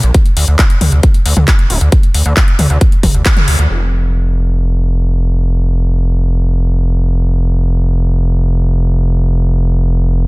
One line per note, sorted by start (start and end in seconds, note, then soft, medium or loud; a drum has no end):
0.03 0.11 A#1 medium
0.03 closed hi-hat soft
0.14 kick loud
0.14 closed hi-hat medium
0.26 closed hi-hat soft
0.37 0.45 D2 medium
0.37 open hi-hat loud
0.48 0.56 D2 medium
0.48 closed hi-hat soft
0.59 kick loud
0.59 clap loud
0.59 closed hi-hat medium
0.70 closed hi-hat soft
0.81 0.89 D2 medium
0.81 open hi-hat medium
0.81 mid tom medium
0.92 1.00 D2 medium
0.92 closed hi-hat soft
1.03 kick loud
1.03 closed hi-hat medium
1.14 closed hi-hat soft
1.26 1.34 D2 medium
1.26 open hi-hat loud
1.37 1.45 D2 medium
1.37 closed hi-hat soft
1.37 mid tom medium
1.48 kick loud
1.48 clap loud
1.48 closed hi-hat medium
1.59 closed hi-hat soft
1.70 1.78 D1 medium
1.70 open hi-hat medium
1.81 1.89 D2 medium
1.81 closed hi-hat soft
1.92 kick loud
1.92 closed hi-hat loud
2.03 closed hi-hat soft
2.14 2.22 D2 loud
2.14 open hi-hat loud
2.26 2.34 D2 medium
2.37 kick loud
2.37 clap loud
2.37 closed hi-hat medium
2.48 closed hi-hat soft
2.59 2.67 D2 medium
2.59 open hi-hat medium
2.59 mid tom medium
2.70 2.78 D2 medium
2.70 closed hi-hat soft
2.81 kick loud
2.81 closed hi-hat loud
2.92 closed hi-hat soft
3.03 3.11 D1 loud
3.03 kick medium
3.03 open hi-hat loud
3.03 mid tom medium
3.14 3.23 D2 medium
3.14 closed hi-hat soft
3.26 kick loud
3.26 clap loud
3.26 closed hi-hat medium
3.37 closed hi-hat soft
3.37 mid tom medium
3.48 3.56 D2 medium
3.48 open hi-hat medium
3.59 3.67 D2 medium
3.59 closed hi-hat soft
3.70 10.27 F1 medium